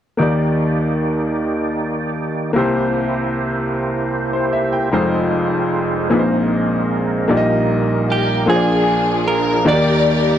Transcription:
0.17 upright piano D#2 D#3 A#3 D#4 G4, tonewheel organ A#3 D#4 G4 D5
0.22 upright piano D5
2.53 upright piano C2 C3 A#3 E4 G4, tonewheel organ G4
2.58 tonewheel organ A#3 E4 C5, upright piano C5
4.33 upright piano C5
4.53 upright piano E5
4.72 upright piano G5
4.92 upright piano F1 F2 G#3 D#4 F4 C5, tonewheel organ G#3 D#4 F4 C5
6.10 upright piano A#1 A#2 A#3 D#4 G#4 B4, tonewheel organ G#3 C4 D#4 A#4
6.19 upright piano C5
7.28 upright piano A#1 A#2 A#3 D#4 G4 D5, tonewheel organ A#2 G3 A#3 D#4 A4
7.36 tonewheel organ A#4, upright piano D#5
8.12 clean electric guitar G4, string section G4
8.46 upright piano A#1 A#2 A#3 F4 G#4 C5, tonewheel organ F3 A#3 C#4 G#4, string section D4, clean electric guitar G#4
8.50 string section F4 G#4
8.54 tonewheel organ D4, upright piano D5
9.28 clean electric guitar A#4, string section A#4
9.65 upright piano D#2 D#3 A#3 D#4 F#4 D5, tonewheel organ D#3 A#3 G4 D5, clean electric guitar D5
9.69 string section G4 A#4 D5, upright piano G4

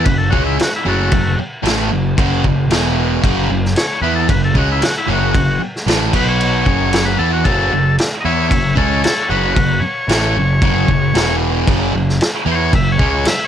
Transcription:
0.04 picked electric bass F#1, distorted electric guitar F#2 C#3, transistor combo organ B4, kick, crash
0.18 transistor combo organ A4
0.30 picked electric bass C#2, distorted electric guitar C#3 G#3 C#4, transistor combo organ F#4, kick
0.46 transistor combo organ E4
0.58 muted distorted electric guitar stroke, muted picked electric bass stroke, snare, crash
0.63 transistor combo organ F#4
0.76 transistor combo organ E4
0.85 picked electric bass F#1, distorted electric guitar F#2 C#3 F#3, transistor combo organ A3 F#4
1.12 picked electric bass F#1, distorted electric guitar F#2 C#3, kick, crash
1.38 muted picked electric bass stroke, muted distorted electric guitar stroke
1.62 picked electric bass A1, distorted electric guitar A2 E3 A3, crash
1.67 snare
1.89 picked electric bass F#1, distorted electric guitar F#2 C#3
2.17 picked electric bass F#1, distorted electric guitar F#2 C#3 F#3, kick, crash
2.44 picked electric bass F#1, distorted electric guitar F#2 C#3, kick
2.68 picked electric bass E1, distorted electric guitar E2 B2 E3, crash
2.72 snare
3.23 picked electric bass F#1, distorted electric guitar F#2 C#3 F#3, kick, crash
3.49 picked electric bass F#1, distorted electric guitar F#2 C#3
3.65 snare
3.76 transistor combo organ C#5, snare, crash
3.88 transistor combo organ C#5
4.01 picked electric bass E2, distorted electric guitar E3 B3 E4, transistor combo organ B4
4.15 transistor combo organ A4
4.28 picked electric bass F#1, distorted electric guitar F#2 C#3, transistor combo organ B4, kick, crash
4.45 transistor combo organ A4
4.54 picked electric bass C#2, distorted electric guitar C#3 G#3 C#4, kick
4.59 transistor combo organ F#4
4.72 transistor combo organ E4
4.81 transistor combo organ F#4, muted distorted electric guitar stroke, muted picked electric bass stroke, snare, crash
4.98 transistor combo organ E4
5.07 picked electric bass F#1, distorted electric guitar F#2 C#3 F#3
5.13 transistor combo organ F#4
5.34 picked electric bass F#1, distorted electric guitar F#2 C#3, kick, crash
5.60 muted distorted electric guitar stroke, muted picked electric bass stroke
5.76 snare
5.86 picked electric bass A1, distorted electric guitar A2 E3 A3, snare, crash
6.13 picked electric bass B1, distorted electric guitar B2 F#3 B3, transistor combo organ B4, kick, crash
6.23 transistor combo organ C5
6.29 transistor combo organ C#5
6.40 crash
6.66 picked electric bass F#1, distorted electric guitar F#2 C#3 F#3, kick
6.93 snare, crash
7.05 transistor combo organ B4
7.18 picked electric bass E2, distorted electric guitar E3 B3 E4, transistor combo organ A4
7.33 transistor combo organ F#4
7.44 picked electric bass F#1, distorted electric guitar F#2 C#3 F#3, transistor combo organ A4, kick, crash
7.72 picked electric bass F#1, distorted electric guitar F#2 C#3
7.98 snare, crash
8.20 transistor combo organ D#5
8.25 picked electric bass E2, distorted electric guitar E3 B3 E4, transistor combo organ C#5 E5
8.48 picked electric bass F#1, distorted electric guitar F#2 C#3, transistor combo organ C#5 E5, kick, crash
8.76 picked electric bass C#2, distorted electric guitar C#3 G#3 C#4, transistor combo organ A4 C#5, kick
9.04 transistor combo organ A4 C#5, muted distorted electric guitar stroke, muted picked electric bass stroke, snare, crash
9.29 picked electric bass F#1, distorted electric guitar F#2 C#3 F#3, transistor combo organ F#4 B4
9.54 picked electric bass F#1, distorted electric guitar F#2 C#3, transistor combo organ F#4 B4, kick, crash
9.80 transistor combo organ C#5, muted picked electric bass stroke, muted distorted electric guitar stroke
10.08 picked electric bass A1, distorted electric guitar A2 E3 A3, snare, crash
10.35 picked electric bass F#1, distorted electric guitar F#2 C#3
10.61 picked electric bass F#1, distorted electric guitar F#2 C#3 F#3, kick, crash
10.88 picked electric bass F#1, distorted electric guitar F#2 C#3, kick
11.13 picked electric bass E1, distorted electric guitar E2 B2 E3, snare, crash
11.67 picked electric bass F#1, distorted electric guitar F#2 C#3 F#3, kick, crash
11.93 picked electric bass F#1, distorted electric guitar F#2 C#3
12.09 snare
12.21 snare, crash
12.46 picked electric bass E2, distorted electric guitar E3 B3 E4
12.52 transistor combo organ C5 C#5
12.72 picked electric bass F#1, distorted electric guitar F#2 C#3, transistor combo organ E5, kick, crash
12.92 transistor combo organ C#5
12.99 picked electric bass C#2, distorted electric guitar C#3 G#3 C#4, kick
13.11 transistor combo organ C#5
13.25 transistor combo organ E5, muted picked electric bass stroke, muted distorted electric guitar stroke, snare, crash

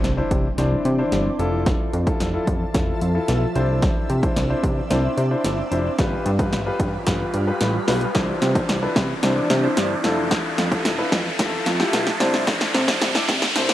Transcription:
Already playing: ambient pad E3 C4 D4, impact, riser
0.04 analog synth bass C2, snare, closed hi-hat
0.17 grand piano D4 E4 C5
0.31 analog synth bass C3, kick, closed hi-hat
0.58 analog synth bass C2, grand piano D4 E4 C5, snare, closed hi-hat
0.85 analog synth bass C3, closed hi-hat
0.99 grand piano D4 E4 C5
1.12 analog synth bass G1, snare, closed hi-hat
1.39 analog synth bass F1, ambient pad F3 A4 E5, grand piano E4 F4 A4, closed hi-hat
1.66 kick, snare, closed hi-hat
1.93 analog synth bass F2, closed hi-hat
2.07 grand piano E4 F4 A4, kick, closed hi-hat
2.20 analog synth bass F1, snare, closed hi-hat
2.34 grand piano E4 F4 A4
2.47 analog synth bass F2, kick, closed hi-hat
2.74 analog synth bass F1, grand piano E4 F4 A4, kick, snare, closed hi-hat
3.01 analog synth bass F2, closed hi-hat
3.15 grand piano E4 F4 A4
3.28 analog synth bass B1, snare, closed hi-hat
3.55 analog synth bass C2, ambient pad C4 D4, grand piano D4 E4 C5, closed hi-hat
3.82 kick, snare, closed hi-hat
4.10 analog synth bass C3, closed hi-hat
4.23 grand piano D4 E4 C5, kick, closed hi-hat
4.36 analog synth bass C2, snare, closed hi-hat
4.50 grand piano D4 E4 C5
4.63 analog synth bass C3, kick, closed hi-hat
4.90 analog synth bass C2, grand piano D4 E4 C5, snare, closed hi-hat
5.17 analog synth bass C3, closed hi-hat
5.31 grand piano D4 E4 C5
5.44 analog synth bass G1, snare, closed hi-hat
5.71 analog synth bass F1, grand piano D4 E4 C5, closed hi-hat
5.98 analog synth bass G1, ambient pad G3 F4 B4, grand piano F4 G4 B4, kick, snare, closed hi-hat
6.26 analog synth bass G2, closed hi-hat
6.39 grand piano F4 G4 B4, kick, closed hi-hat
6.53 analog synth bass G1, snare, closed hi-hat
6.66 grand piano F4 G4 B4
6.80 analog synth bass G2, kick, closed hi-hat
7.07 analog synth bass G1, grand piano F4 G4 B4, kick, snare, closed hi-hat
7.34 analog synth bass G2, closed hi-hat
7.47 grand piano F4 G4 B4
7.61 analog synth bass A1, snare, closed hi-hat
7.87 analog synth bass B1, grand piano F4 G4 B4, snare, open hi-hat
8.01 closed hi-hat
8.15 analog synth bass C2, ambient pad E3 C4 D4, grand piano D4 E4 C5, kick, snare, closed hi-hat
8.42 analog synth bass C3, snare, closed hi-hat
8.55 grand piano D4 E4 C5, kick, closed hi-hat
8.69 analog synth bass C2, snare, closed hi-hat
8.82 grand piano D4 E4 B4
8.96 analog synth bass C3, kick, snare, closed hi-hat
9.22 analog synth bass C2, grand piano D4 E4 C5, snare, closed hi-hat
9.50 analog synth bass C3, snare, closed hi-hat
9.63 grand piano D4 E4 C5
9.77 analog synth bass G1, snare, closed hi-hat
10.04 analog synth bass F1, ambient pad F3 A4 E5, grand piano E4 F4 A4, snare, closed hi-hat
10.31 kick, snare, closed hi-hat
10.58 analog synth bass F2, snare, closed hi-hat
10.71 grand piano E4 F4 A4, kick, closed hi-hat
10.85 analog synth bass F1, snare, closed hi-hat
10.98 grand piano E4 F4 B4
11.12 analog synth bass F2, kick, snare, closed hi-hat
11.39 analog synth bass F1, grand piano E4 F4 A4, kick, snare, closed hi-hat
11.66 analog synth bass F2, snare, closed hi-hat
11.79 grand piano E4 F4 G4, snare
11.93 analog synth bass B1, snare, closed hi-hat
12.07 snare
12.20 analog synth bass C2, ambient pad C4 D4, grand piano D4 E4 C5, snare, closed hi-hat
12.34 snare
12.47 kick, snare, closed hi-hat
12.61 snare
12.74 analog synth bass C3, snare, closed hi-hat
12.87 grand piano D4 E4 C5, kick, snare, closed hi-hat
13.01 analog synth bass C2, snare, closed hi-hat
13.15 grand piano D4 E4 D5, snare
13.29 analog synth bass C3, kick, snare, closed hi-hat
13.42 snare
13.55 analog synth bass C2, grand piano D4 E4 C5, snare, closed hi-hat
13.69 snare

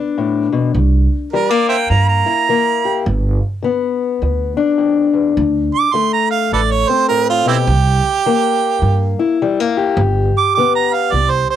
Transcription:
Already playing: steel-string acoustic guitar D2 B3 D4
0.18 steel-string acoustic guitar A2
0.52 steel-string acoustic guitar B2
0.75 upright bass C2, steel-string acoustic guitar C3
1.33 steel-string acoustic guitar E3 G3, harmonica A#4
1.50 steel-string acoustic guitar A#3, harmonica D5
1.69 harmonica C5 E5 G5
1.90 upright bass G2, steel-string acoustic guitar G2, harmonica A#5
2.09 harmonica A#5
2.26 steel-string acoustic guitar E4
2.49 steel-string acoustic guitar E3 A#3
2.85 steel-string acoustic guitar G4
3.06 upright bass G1, steel-string acoustic guitar G2
3.62 steel-string acoustic guitar D3 B3
4.22 upright bass D2, steel-string acoustic guitar D2
4.57 steel-string acoustic guitar D4
4.78 steel-string acoustic guitar F2
5.13 steel-string acoustic guitar E2
5.37 upright bass D2, steel-string acoustic guitar D2
5.75 harmonica D6
5.93 steel-string acoustic guitar D3 A3, harmonica C6
6.13 harmonica A#5
6.31 harmonica F5
6.52 upright bass A1, steel-string acoustic guitar A2, harmonica A4 B4 D5
6.72 harmonica C#5
6.89 steel-string acoustic guitar C4, harmonica C5
7.09 steel-string acoustic guitar A2, harmonica A#4
7.30 harmonica F4
7.45 steel-string acoustic guitar B2, harmonica C4 E4 G4
7.67 upright bass C2, steel-string acoustic guitar C3
8.26 steel-string acoustic guitar E3 A#3
8.82 upright bass G2, steel-string acoustic guitar G2
9.19 steel-string acoustic guitar E4
9.42 steel-string acoustic guitar E3 G3
9.60 steel-string acoustic guitar A#3
9.77 steel-string acoustic guitar G4
9.97 upright bass G1, steel-string acoustic guitar G2
10.38 harmonica D6
10.55 steel-string acoustic guitar D3 B3, harmonica D6
10.76 harmonica A#5
10.94 harmonica F5
11.12 upright bass C2, steel-string acoustic guitar C3, harmonica D5
11.30 harmonica C5
11.50 harmonica C5

